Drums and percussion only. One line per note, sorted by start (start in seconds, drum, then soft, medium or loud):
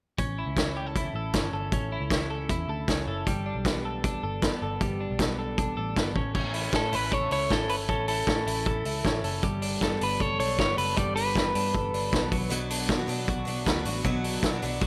0.18 kick medium
0.18 closed hi-hat medium
0.57 kick medium
0.57 snare loud
0.57 closed hi-hat medium
0.96 kick loud
0.96 closed hi-hat medium
1.33 kick medium
1.33 snare medium
1.33 closed hi-hat medium
1.72 kick loud
1.72 closed hi-hat medium
2.10 kick loud
2.10 snare medium
2.10 closed hi-hat medium
2.49 kick loud
2.49 closed hi-hat medium
2.88 kick medium
2.88 snare medium
2.88 closed hi-hat medium
3.27 kick medium
3.27 closed hi-hat medium
3.65 kick loud
3.65 snare medium
3.65 closed hi-hat medium
4.04 kick loud
4.04 closed hi-hat medium
4.42 kick medium
4.42 snare loud
4.42 closed hi-hat medium
4.81 kick loud
4.81 closed hi-hat medium
5.19 kick loud
5.19 snare loud
5.19 closed hi-hat medium
5.58 kick loud
5.58 closed hi-hat medium
5.96 kick loud
5.96 snare medium
5.96 closed hi-hat medium
6.16 kick medium
6.35 kick medium
6.35 crash medium
6.54 open hi-hat medium
6.73 kick loud
6.73 snare loud
6.73 closed hi-hat medium
6.93 open hi-hat medium
7.12 kick loud
7.12 closed hi-hat medium
7.31 open hi-hat medium
7.50 kick medium
7.50 snare medium
7.50 closed hi-hat medium
7.69 open hi-hat medium
7.89 kick loud
7.89 closed hi-hat medium
8.08 open hi-hat medium
8.27 kick loud
8.27 snare loud
8.27 closed hi-hat medium
8.47 open hi-hat medium
8.66 kick loud
8.66 closed hi-hat medium
8.85 open hi-hat medium
9.05 kick medium
9.05 snare loud
9.05 closed hi-hat medium
9.24 open hi-hat medium
9.43 kick loud
9.43 closed hi-hat medium
9.62 open hi-hat medium
9.81 kick loud
9.81 snare loud
9.81 closed hi-hat medium
10.01 open hi-hat medium
10.20 kick loud
10.20 closed hi-hat medium
10.40 open hi-hat medium
10.59 kick loud
10.59 snare medium
10.59 closed hi-hat medium
10.78 open hi-hat medium
10.97 kick loud
10.97 closed hi-hat medium
11.17 open hi-hat medium
11.36 kick loud
11.36 snare loud
11.36 closed hi-hat medium
11.55 open hi-hat medium
11.74 kick loud
11.94 open hi-hat medium
12.13 kick loud
12.13 snare medium
12.13 closed hi-hat medium
12.32 kick medium
12.32 open hi-hat medium
12.51 closed hi-hat medium
12.70 open hi-hat medium
12.89 kick loud
12.89 snare loud
12.89 closed hi-hat medium
13.09 open hi-hat medium
13.28 kick loud
13.28 closed hi-hat medium
13.47 open hi-hat medium
13.66 kick medium
13.66 snare loud
13.66 closed hi-hat medium
13.85 open hi-hat medium
14.04 kick loud
14.04 closed hi-hat medium
14.24 open hi-hat medium
14.43 kick medium
14.43 snare loud
14.43 closed hi-hat medium
14.62 open hi-hat medium
14.81 kick loud
14.81 closed hi-hat medium